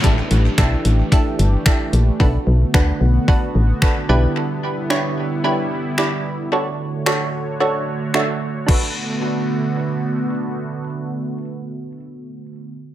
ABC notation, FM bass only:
X:1
M:4/4
L:1/8
Q:1/4=111
K:Bm
V:1 name="FM bass" clef=bass
A,,, A,,, B,,, A,,, z G,,, z ^A,,, | B,,, B,,, D,, B,,, z A,,, z B,,, | z8 | z8 |
z8 | z8 |]